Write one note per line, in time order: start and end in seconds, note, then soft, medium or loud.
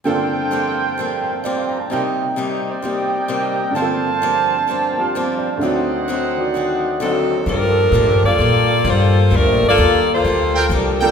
0.04 0.37 G2 soft
0.04 1.90 G2 soft
0.04 1.90 D3 soft
0.04 0.37 F3 soft
0.04 1.90 A#3 soft
0.04 0.38 A#3 soft
0.04 1.89 C4 soft
0.04 0.38 C4 soft
0.04 1.91 F4 soft
0.04 1.90 A4 medium
0.04 1.91 A4 medium
0.04 1.90 C5 medium
0.04 1.33 F5 medium
0.04 1.21 G5 medium
0.51 0.83 G2 medium
0.51 0.84 F3 medium
0.51 0.84 A#3 medium
0.51 0.84 C4 medium
0.98 1.30 G2 soft
0.98 1.30 F3 soft
0.98 1.31 A#3 medium
0.98 1.31 C4 medium
1.21 1.36 A#4 soft
1.21 1.35 G5 soft
1.33 1.48 C5 soft
1.33 1.48 F5 soft
1.44 1.76 G2 medium
1.44 1.77 F3 medium
1.44 1.77 A#3 medium
1.44 1.77 C4 medium
1.44 1.65 D5 soft
1.44 1.65 D6 soft
1.55 1.75 F5 soft
1.55 1.76 C6 soft
1.67 1.81 G5 soft
1.67 1.82 A#5 soft
1.78 1.95 A5 soft
1.90 2.22 C3 soft
1.90 3.76 C3 soft
1.90 2.23 G3 soft
1.90 2.23 A#3 soft
1.90 2.81 C4 soft
1.90 3.76 D#4 soft
1.90 2.24 D#4 medium
1.90 3.76 A#4 medium
1.90 3.76 A#4 soft
1.90 2.66 C5 medium
1.90 3.76 D5 soft
1.90 3.76 D#5 medium
1.90 3.74 G5 medium
2.36 2.69 C3 medium
2.36 2.69 G3 medium
2.36 2.70 A#3 medium
2.36 2.70 D#4 medium
2.68 3.74 C5 medium
2.68 3.76 D5 medium
2.82 3.15 C3 soft
2.82 3.16 G3 soft
2.82 3.74 A#3 soft
2.82 3.16 A#3 soft
2.82 3.75 C4 soft
2.82 3.16 D#4 medium
2.82 3.76 G4 soft
3.28 3.61 C3 medium
3.28 3.61 G3 medium
3.28 3.62 A#3 medium
3.28 3.62 D#4 medium
3.71 5.58 G2 soft
3.71 5.58 D3 soft
3.75 4.08 G2 soft
3.75 4.08 F3 medium
3.75 5.61 A#3 soft
3.75 4.09 A#3 soft
3.75 4.97 C4 soft
3.75 4.09 C4 medium
3.75 4.97 C5 medium
3.75 4.97 F5 medium
3.75 4.97 G5 medium
3.75 5.49 A5 medium
3.80 5.63 F4 soft
3.80 5.64 A4 medium
4.22 4.54 G2 medium
4.22 4.55 F3 medium
4.22 4.55 A#3 medium
4.22 4.55 C4 medium
4.68 5.00 G2 soft
4.68 5.01 F3 soft
4.68 5.01 A#3 soft
4.68 5.02 C4 medium
4.91 4.99 A#4 soft
4.91 5.05 A#5 soft
4.98 5.60 F3 soft
4.98 5.59 C4 soft
4.98 5.61 D4 soft
4.98 5.61 G4 soft
4.98 5.62 A#4 soft
4.98 5.60 C5 medium
4.98 5.59 D5 soft
4.98 5.26 F5 soft
4.98 5.38 G5 medium
5.03 5.19 C6 soft
5.14 5.47 G2 medium
5.14 5.48 F3 medium
5.14 5.48 A#3 medium
5.14 5.48 C4 medium
5.14 5.51 C5 soft
5.14 5.36 D6 soft
5.26 5.46 F5 medium
5.37 5.70 D5 soft
5.37 5.52 G5 medium
5.49 5.65 A5 soft
5.58 7.45 D2 medium
5.58 7.45 D3 soft
5.58 5.93 D3 soft
5.58 7.46 C4 soft
5.58 7.46 C5 medium
5.58 6.37 D5 medium
5.58 7.46 D#5 medium
5.58 7.46 F#5 medium
5.62 5.94 F#3 soft
5.62 5.95 C4 medium
5.62 7.47 D#4 soft
5.62 5.95 D#4 soft
5.62 6.39 F#4 soft
6.08 6.40 D3 medium
6.08 6.40 F#3 medium
6.08 6.41 C4 medium
6.08 6.41 D#4 medium
6.37 7.46 D#3 soft
6.37 7.47 F#4 soft
6.37 7.46 D5 medium
6.37 7.46 D5 soft
6.54 6.86 D3 soft
6.54 6.87 F#3 medium
6.54 6.87 C4 soft
6.54 6.88 D#4 medium
7.00 7.32 D3 medium
7.00 7.44 F#3 medium
7.00 7.33 F#3 medium
7.00 7.43 C4 medium
7.00 7.33 C4 medium
7.00 7.44 D#4 medium
7.00 7.34 D#4 medium
7.00 7.44 A4 medium
7.46 7.91 G2 medium
7.46 8.20 F3 medium
7.46 7.79 G3 medium
7.46 7.79 A#3 soft
7.46 8.20 D4 medium
7.46 7.80 F4 medium
7.46 8.20 A4 medium
7.46 7.80 A4 medium
7.46 8.20 A#4 loud
7.92 8.07 A2 medium
7.92 8.25 G3 medium
7.92 8.26 A#3 medium
7.92 8.26 F4 medium
7.92 8.26 A4 medium
8.07 8.22 G2 medium
8.23 8.38 F2 medium
8.23 8.86 A#3 medium
8.23 8.86 F4 medium
8.23 8.86 A4 medium
8.23 8.86 D5 loud
8.38 8.83 A#2 medium
8.38 8.71 G3 soft
8.38 8.72 A#3 soft
8.38 8.72 F4 medium
8.38 8.72 A4 medium
8.84 9.30 G2 loud
8.84 9.17 G3 medium
8.84 9.18 A#3 medium
8.84 9.18 F4 medium
8.84 9.19 A4 medium
8.89 9.33 A#3 medium
8.89 9.33 F4 medium
8.89 9.33 A4 medium
8.89 9.33 C5 medium
9.30 9.47 D2 medium
9.30 9.63 G3 soft
9.30 9.64 A#3 soft
9.30 9.64 F4 medium
9.30 9.65 A4 medium
9.35 9.64 F3 medium
9.35 9.64 A3 medium
9.35 9.64 D4 medium
9.35 9.64 A#4 medium
9.47 9.61 A#1 medium
9.62 9.76 G1 medium
9.68 10.08 A#3 medium
9.68 10.08 F4 medium
9.68 10.08 A4 loud
9.68 10.08 D5 loud
9.77 10.23 D#2 medium
9.77 10.10 G3 medium
9.77 10.10 A#3 medium
9.77 10.11 F4 medium
9.77 10.11 A4 medium
10.13 10.69 A#3 medium
10.13 10.69 F4 medium
10.13 10.69 A4 medium
10.13 10.68 C5 loud
10.24 10.69 D2 medium
10.24 10.56 G3 soft
10.24 10.57 A#3 soft
10.24 10.57 F4 soft
10.24 10.58 A4 soft
10.55 10.65 A4 medium
10.55 10.66 A#4 medium
10.55 10.65 F5 medium
10.55 10.65 G5 medium
10.69 11.11 C2 medium
10.69 11.11 F3 medium
10.69 11.02 G3 medium
10.69 11.03 A#3 medium
10.69 11.11 D4 medium
10.69 11.03 F4 medium
10.69 11.03 A4 medium
10.69 11.11 A4 medium
10.74 11.11 A#4 medium
11.01 11.11 G3 medium
11.01 11.11 A#3 medium
11.01 11.11 D4 medium
11.01 11.11 F4 medium
11.01 11.11 A4 medium
11.01 11.11 A#4 medium
11.01 11.11 F5 medium
11.01 11.11 G5 medium